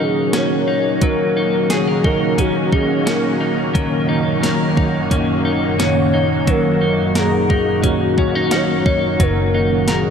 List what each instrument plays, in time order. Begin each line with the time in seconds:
Already playing: string machine D#3 A#3 C#4 F#4, clean electric guitar F#3 C#4 A#4
0.00 clean electric guitar D#4, soft synth lead G#4
0.33 clean electric guitar C#4, soft synth lead C#5, snare, closed hi-hat
0.68 clean electric guitar D#4
1.01 clean electric guitar F#3, soft synth lead A#4, kick, closed hi-hat
1.37 clean electric guitar D#4
1.70 clean electric guitar G#4, soft synth lead G#4, snare, closed hi-hat
1.88 clean electric guitar A#4
2.04 clean electric guitar D#4, soft synth lead A#4, kick
2.38 clean electric guitar C#4, soft synth lead F#4, kick, closed hi-hat
2.73 clean electric guitar D#4, soft synth lead G#4, kick
3.06 clean electric guitar C#4, soft synth lead A#4, snare, closed hi-hat
3.41 clean electric guitar D#4
3.74 string machine F#2 F#4, clean electric guitar F#3, kick, closed hi-hat
4.09 clean electric guitar D#4
4.43 clean electric guitar A#4, snare, closed hi-hat
4.77 clean electric guitar D#4, kick
5.11 clean electric guitar C#4, kick, closed hi-hat
5.45 clean electric guitar D#4
5.79 clean electric guitar C#4, soft synth lead C#5, snare, closed hi-hat
6.14 clean electric guitar D#4
6.47 clean electric guitar F#3, string machine D#4, soft synth lead A#4, kick, closed hi-hat
6.82 clean electric guitar D#4
7.15 soft synth lead G#4, clean electric guitar A#4, snare, closed hi-hat
7.50 clean electric guitar D#4, kick
7.83 clean electric guitar C#4, soft synth lead F#4, kick, closed hi-hat
8.18 clean electric guitar C#4, kick
8.35 clean electric guitar D#4
8.51 clean electric guitar C#4, soft synth lead C#5, snare, closed hi-hat
8.86 clean electric guitar D#4, kick
9.20 fingered electric bass F#1, string machine D#3 C#4, clean electric guitar F#3, soft synth lead A#4, kick, closed hi-hat
9.54 clean electric guitar D#4
9.88 soft synth lead G#4, clean electric guitar A#4, snare, closed hi-hat